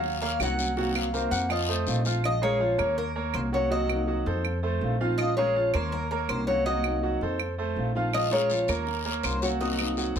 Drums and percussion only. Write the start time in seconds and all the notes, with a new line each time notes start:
0.04 long guiro
0.40 short guiro, claves
0.59 short guiro
0.77 long guiro
0.96 claves
1.14 short guiro
1.32 short guiro
1.50 long guiro, claves
1.87 short guiro
2.05 short guiro
2.24 claves
2.79 claves
3.34 claves
3.89 claves
4.45 claves
5.19 claves
5.74 claves
6.29 claves
6.84 claves
7.39 claves
8.13 long guiro, claves
8.50 short guiro
8.68 short guiro, claves
8.87 long guiro
9.23 short guiro, claves
9.42 short guiro
9.60 long guiro
9.79 claves
9.97 short guiro
10.16 short guiro